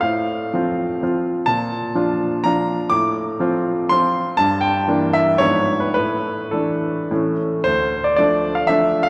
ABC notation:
X:1
M:3/4
L:1/16
Q:1/4=120
K:F
V:1 name="Grand piano"
f8- f2 z2 | [K:Dm] a8 b4 | d'8 c'4 | a2 g4 e2 ^c3 =B |
=B4 A6 z2 | c3 d d3 f e3 f |]
V:2 name="Grand piano"
A,,4 [F,CF]4 [F,CF]4 | [K:Dm] B,,4 [F,DF]4 [F,DF]4 | A,,4 [F,CF]4 [F,CF]4 | G,,4 [E,B,D]4 [^G,,^E,=B,D]4 |
A,,4 [E,A,D]4 [A,,E,A,^C]4 | D,,4 [F,A,D]4 [F,A,D]4 |]